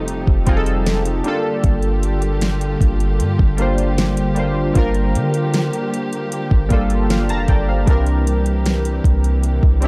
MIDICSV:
0, 0, Header, 1, 6, 480
1, 0, Start_track
1, 0, Key_signature, -2, "minor"
1, 0, Tempo, 779221
1, 1010, Time_signature, 4, 2, 24, 8
1, 6084, End_track
2, 0, Start_track
2, 0, Title_t, "Celesta"
2, 0, Program_c, 0, 8
2, 775, Note_on_c, 0, 74, 77
2, 2479, Note_off_c, 0, 74, 0
2, 2930, Note_on_c, 0, 72, 81
2, 4128, Note_on_c, 0, 77, 62
2, 4278, Note_on_c, 0, 84, 51
2, 4637, Note_off_c, 0, 72, 0
2, 5065, Note_off_c, 0, 77, 0
2, 5199, Note_off_c, 0, 84, 0
2, 6084, End_track
3, 0, Start_track
3, 0, Title_t, "Synth keys"
3, 0, Program_c, 1, 88
3, 0, Control_c, 1, 64, 127
3, 0, Note_on_c, 1, 55, 85
3, 0, Note_on_c, 1, 60, 78
3, 0, Note_on_c, 1, 63, 79
3, 0, Note_on_c, 1, 65, 78
3, 0, Note_on_c, 1, 67, 55
3, 0, Note_on_c, 1, 69, 97
3, 0, Note_on_c, 1, 72, 65
3, 280, Note_off_c, 1, 55, 0
3, 280, Note_on_c, 1, 55, 87
3, 287, Note_off_c, 1, 60, 0
3, 287, Note_on_c, 1, 60, 83
3, 295, Note_off_c, 1, 63, 0
3, 295, Note_on_c, 1, 63, 79
3, 301, Note_off_c, 1, 65, 0
3, 301, Note_on_c, 1, 65, 84
3, 309, Note_on_c, 1, 68, 74
3, 339, Note_off_c, 1, 68, 0
3, 349, Note_off_c, 1, 69, 0
3, 349, Note_on_c, 1, 69, 99
3, 716, Note_off_c, 1, 55, 0
3, 719, Note_off_c, 1, 60, 0
3, 723, Note_off_c, 1, 63, 0
3, 726, Note_off_c, 1, 65, 0
3, 751, Note_off_c, 1, 69, 0
3, 761, Note_on_c, 1, 55, 90
3, 769, Note_on_c, 1, 58, 86
3, 776, Note_on_c, 1, 62, 78
3, 778, Control_c, 1, 64, 0
3, 779, Note_off_c, 1, 67, 0
3, 782, Note_on_c, 1, 65, 80
3, 783, Note_off_c, 1, 72, 0
3, 789, Note_on_c, 1, 69, 101
3, 900, Control_c, 1, 64, 127
3, 1627, Note_off_c, 1, 55, 0
3, 1631, Note_off_c, 1, 58, 0
3, 1635, Note_off_c, 1, 62, 0
3, 1638, Note_off_c, 1, 65, 0
3, 1641, Note_off_c, 1, 69, 0
3, 2199, Note_on_c, 1, 55, 86
3, 2207, Note_on_c, 1, 58, 79
3, 2214, Note_on_c, 1, 62, 79
3, 2221, Note_on_c, 1, 65, 76
3, 2229, Note_on_c, 1, 72, 93
3, 2636, Note_off_c, 1, 55, 0
3, 2640, Note_off_c, 1, 58, 0
3, 2643, Note_off_c, 1, 62, 0
3, 2646, Note_off_c, 1, 65, 0
3, 2650, Note_off_c, 1, 72, 0
3, 2679, Note_on_c, 1, 55, 79
3, 2687, Note_on_c, 1, 58, 73
3, 2695, Note_on_c, 1, 62, 76
3, 2701, Note_on_c, 1, 65, 72
3, 2708, Note_on_c, 1, 72, 89
3, 2900, Note_off_c, 1, 55, 0
3, 2904, Note_off_c, 1, 58, 0
3, 2908, Note_off_c, 1, 62, 0
3, 2911, Note_off_c, 1, 65, 0
3, 2914, Note_off_c, 1, 72, 0
3, 2918, Note_on_c, 1, 55, 83
3, 2924, Note_on_c, 1, 58, 79
3, 2932, Note_on_c, 1, 62, 81
3, 2939, Note_on_c, 1, 65, 85
3, 2947, Note_on_c, 1, 70, 98
3, 3786, Note_off_c, 1, 55, 0
3, 3789, Note_off_c, 1, 58, 0
3, 3793, Note_off_c, 1, 62, 0
3, 3796, Note_off_c, 1, 65, 0
3, 3800, Note_off_c, 1, 70, 0
3, 4119, Note_on_c, 1, 55, 84
3, 4127, Note_on_c, 1, 58, 81
3, 4135, Note_on_c, 1, 62, 74
3, 4140, Note_on_c, 1, 65, 77
3, 4149, Note_on_c, 1, 69, 91
3, 4378, Note_on_c, 1, 77, 67
3, 4486, Note_off_c, 1, 77, 0
3, 4496, Note_on_c, 1, 81, 77
3, 4496, Note_on_c, 1, 82, 69
3, 4500, Note_on_c, 1, 77, 57
3, 4555, Note_off_c, 1, 55, 0
3, 4559, Note_off_c, 1, 58, 0
3, 4563, Note_off_c, 1, 62, 0
3, 4566, Note_off_c, 1, 65, 0
3, 4570, Note_off_c, 1, 69, 0
3, 4607, Note_off_c, 1, 82, 0
3, 4609, Note_off_c, 1, 77, 0
3, 4614, Note_on_c, 1, 79, 68
3, 4618, Note_on_c, 1, 74, 61
3, 4726, Note_off_c, 1, 79, 0
3, 4728, Note_off_c, 1, 74, 0
3, 4735, Note_on_c, 1, 77, 66
3, 4739, Note_on_c, 1, 72, 52
3, 4828, Note_off_c, 1, 81, 0
3, 4840, Note_on_c, 1, 55, 85
3, 4846, Note_on_c, 1, 60, 79
3, 4853, Note_on_c, 1, 62, 78
3, 4858, Control_c, 1, 64, 0
3, 4860, Note_on_c, 1, 52, 78
3, 4867, Note_on_c, 1, 70, 90
3, 4961, Note_off_c, 1, 77, 0
3, 4963, Note_off_c, 1, 72, 0
3, 4975, Control_c, 1, 64, 127
3, 5707, Note_off_c, 1, 55, 0
3, 5710, Note_off_c, 1, 60, 0
3, 5713, Note_off_c, 1, 62, 0
3, 5717, Note_off_c, 1, 52, 0
3, 5720, Note_off_c, 1, 70, 0
3, 6040, Note_on_c, 1, 55, 82
3, 6048, Note_on_c, 1, 60, 78
3, 6055, Note_on_c, 1, 62, 80
3, 6061, Note_on_c, 1, 64, 78
3, 6084, Note_off_c, 1, 55, 0
3, 6084, Note_off_c, 1, 60, 0
3, 6084, Note_off_c, 1, 62, 0
3, 6084, Note_off_c, 1, 64, 0
3, 6084, End_track
4, 0, Start_track
4, 0, Title_t, "String section"
4, 0, Program_c, 2, 48
4, 0, Note_on_c, 2, 48, 74
4, 0, Note_on_c, 2, 53, 72
4, 0, Note_on_c, 2, 57, 67
4, 0, Note_on_c, 2, 63, 74
4, 0, Note_on_c, 2, 67, 88
4, 746, Note_off_c, 2, 48, 0
4, 754, Note_off_c, 2, 57, 0
4, 755, Note_off_c, 2, 53, 0
4, 755, Note_off_c, 2, 63, 0
4, 766, Note_on_c, 2, 65, 73
4, 767, Note_on_c, 2, 50, 80
4, 767, Note_on_c, 2, 55, 75
4, 767, Note_on_c, 2, 58, 69
4, 4823, Note_off_c, 2, 65, 0
4, 4824, Note_off_c, 2, 50, 0
4, 4847, Note_on_c, 2, 48, 76
4, 4848, Note_on_c, 2, 52, 70
4, 6084, Note_off_c, 2, 48, 0
4, 6084, Note_off_c, 2, 52, 0
4, 6084, Note_off_c, 2, 55, 0
4, 6084, Note_off_c, 2, 58, 0
4, 6084, Note_off_c, 2, 67, 0
4, 6084, End_track
5, 0, Start_track
5, 0, Title_t, "808-style bass"
5, 0, Program_c, 3, 38
5, 0, Note_on_c, 3, 29, 101
5, 156, Note_off_c, 3, 29, 0
5, 170, Note_on_c, 3, 29, 93
5, 285, Note_off_c, 3, 29, 0
5, 291, Note_on_c, 3, 29, 100
5, 751, Note_off_c, 3, 29, 0
5, 1010, Note_on_c, 3, 31, 117
5, 1705, Note_off_c, 3, 31, 0
5, 1731, Note_on_c, 3, 31, 107
5, 1971, Note_on_c, 3, 43, 94
5, 1981, Note_off_c, 3, 31, 0
5, 2085, Note_off_c, 3, 43, 0
5, 2091, Note_on_c, 3, 31, 96
5, 2906, Note_off_c, 3, 31, 0
5, 2932, Note_on_c, 3, 31, 109
5, 3174, Note_on_c, 3, 50, 100
5, 3183, Note_off_c, 3, 31, 0
5, 3514, Note_off_c, 3, 50, 0
5, 4013, Note_on_c, 3, 31, 93
5, 4127, Note_off_c, 3, 31, 0
5, 4133, Note_on_c, 3, 31, 105
5, 4493, Note_on_c, 3, 29, 97
5, 4503, Note_off_c, 3, 31, 0
5, 4606, Note_off_c, 3, 29, 0
5, 4611, Note_on_c, 3, 31, 103
5, 4841, Note_off_c, 3, 31, 0
5, 4852, Note_on_c, 3, 36, 112
5, 5547, Note_off_c, 3, 36, 0
5, 5572, Note_on_c, 3, 36, 104
5, 5917, Note_off_c, 3, 36, 0
5, 5933, Note_on_c, 3, 36, 93
5, 6084, Note_off_c, 3, 36, 0
5, 6084, End_track
6, 0, Start_track
6, 0, Title_t, "Drums"
6, 48, Note_on_c, 9, 42, 72
6, 110, Note_off_c, 9, 42, 0
6, 169, Note_on_c, 9, 36, 99
6, 230, Note_off_c, 9, 36, 0
6, 287, Note_on_c, 9, 42, 72
6, 289, Note_on_c, 9, 36, 101
6, 348, Note_off_c, 9, 42, 0
6, 351, Note_off_c, 9, 36, 0
6, 409, Note_on_c, 9, 42, 47
6, 470, Note_off_c, 9, 42, 0
6, 532, Note_on_c, 9, 42, 63
6, 534, Note_on_c, 9, 38, 123
6, 594, Note_off_c, 9, 42, 0
6, 595, Note_off_c, 9, 38, 0
6, 650, Note_on_c, 9, 42, 64
6, 711, Note_off_c, 9, 42, 0
6, 766, Note_on_c, 9, 42, 44
6, 828, Note_off_c, 9, 42, 0
6, 1008, Note_on_c, 9, 42, 79
6, 1009, Note_on_c, 9, 36, 122
6, 1070, Note_off_c, 9, 36, 0
6, 1070, Note_off_c, 9, 42, 0
6, 1124, Note_on_c, 9, 42, 47
6, 1186, Note_off_c, 9, 42, 0
6, 1251, Note_on_c, 9, 42, 85
6, 1313, Note_off_c, 9, 42, 0
6, 1367, Note_on_c, 9, 42, 56
6, 1429, Note_off_c, 9, 42, 0
6, 1487, Note_on_c, 9, 42, 74
6, 1491, Note_on_c, 9, 38, 114
6, 1549, Note_off_c, 9, 42, 0
6, 1552, Note_off_c, 9, 38, 0
6, 1609, Note_on_c, 9, 42, 57
6, 1671, Note_off_c, 9, 42, 0
6, 1729, Note_on_c, 9, 36, 90
6, 1734, Note_on_c, 9, 42, 73
6, 1790, Note_off_c, 9, 36, 0
6, 1796, Note_off_c, 9, 42, 0
6, 1850, Note_on_c, 9, 42, 47
6, 1912, Note_off_c, 9, 42, 0
6, 1970, Note_on_c, 9, 42, 69
6, 2032, Note_off_c, 9, 42, 0
6, 2090, Note_on_c, 9, 36, 107
6, 2152, Note_off_c, 9, 36, 0
6, 2206, Note_on_c, 9, 42, 70
6, 2268, Note_off_c, 9, 42, 0
6, 2329, Note_on_c, 9, 42, 52
6, 2391, Note_off_c, 9, 42, 0
6, 2453, Note_on_c, 9, 42, 66
6, 2454, Note_on_c, 9, 38, 119
6, 2514, Note_off_c, 9, 42, 0
6, 2515, Note_off_c, 9, 38, 0
6, 2570, Note_on_c, 9, 42, 67
6, 2631, Note_off_c, 9, 42, 0
6, 2687, Note_on_c, 9, 42, 47
6, 2748, Note_off_c, 9, 42, 0
6, 2928, Note_on_c, 9, 42, 79
6, 2929, Note_on_c, 9, 36, 115
6, 2990, Note_off_c, 9, 42, 0
6, 2991, Note_off_c, 9, 36, 0
6, 3046, Note_on_c, 9, 42, 48
6, 3108, Note_off_c, 9, 42, 0
6, 3174, Note_on_c, 9, 42, 85
6, 3236, Note_off_c, 9, 42, 0
6, 3289, Note_on_c, 9, 42, 58
6, 3350, Note_off_c, 9, 42, 0
6, 3410, Note_on_c, 9, 42, 71
6, 3414, Note_on_c, 9, 38, 111
6, 3472, Note_off_c, 9, 42, 0
6, 3475, Note_off_c, 9, 38, 0
6, 3532, Note_on_c, 9, 42, 56
6, 3594, Note_off_c, 9, 42, 0
6, 3657, Note_on_c, 9, 42, 70
6, 3719, Note_off_c, 9, 42, 0
6, 3774, Note_on_c, 9, 42, 47
6, 3835, Note_off_c, 9, 42, 0
6, 3893, Note_on_c, 9, 42, 75
6, 3954, Note_off_c, 9, 42, 0
6, 4011, Note_on_c, 9, 36, 105
6, 4073, Note_off_c, 9, 36, 0
6, 4130, Note_on_c, 9, 42, 67
6, 4131, Note_on_c, 9, 36, 95
6, 4191, Note_off_c, 9, 42, 0
6, 4193, Note_off_c, 9, 36, 0
6, 4251, Note_on_c, 9, 42, 50
6, 4312, Note_off_c, 9, 42, 0
6, 4375, Note_on_c, 9, 42, 67
6, 4376, Note_on_c, 9, 38, 123
6, 4436, Note_off_c, 9, 42, 0
6, 4437, Note_off_c, 9, 38, 0
6, 4492, Note_on_c, 9, 42, 69
6, 4554, Note_off_c, 9, 42, 0
6, 4608, Note_on_c, 9, 42, 45
6, 4610, Note_on_c, 9, 36, 89
6, 4670, Note_off_c, 9, 42, 0
6, 4671, Note_off_c, 9, 36, 0
6, 4850, Note_on_c, 9, 36, 120
6, 4851, Note_on_c, 9, 42, 79
6, 4912, Note_off_c, 9, 36, 0
6, 4912, Note_off_c, 9, 42, 0
6, 4968, Note_on_c, 9, 42, 48
6, 5029, Note_off_c, 9, 42, 0
6, 5095, Note_on_c, 9, 42, 82
6, 5157, Note_off_c, 9, 42, 0
6, 5210, Note_on_c, 9, 42, 57
6, 5272, Note_off_c, 9, 42, 0
6, 5332, Note_on_c, 9, 42, 71
6, 5336, Note_on_c, 9, 38, 108
6, 5394, Note_off_c, 9, 42, 0
6, 5397, Note_off_c, 9, 38, 0
6, 5452, Note_on_c, 9, 42, 56
6, 5514, Note_off_c, 9, 42, 0
6, 5570, Note_on_c, 9, 36, 86
6, 5577, Note_on_c, 9, 42, 71
6, 5632, Note_off_c, 9, 36, 0
6, 5638, Note_off_c, 9, 42, 0
6, 5693, Note_on_c, 9, 42, 47
6, 5755, Note_off_c, 9, 42, 0
6, 5812, Note_on_c, 9, 42, 68
6, 5873, Note_off_c, 9, 42, 0
6, 5931, Note_on_c, 9, 36, 101
6, 5993, Note_off_c, 9, 36, 0
6, 6049, Note_on_c, 9, 42, 68
6, 6084, Note_off_c, 9, 42, 0
6, 6084, End_track
0, 0, End_of_file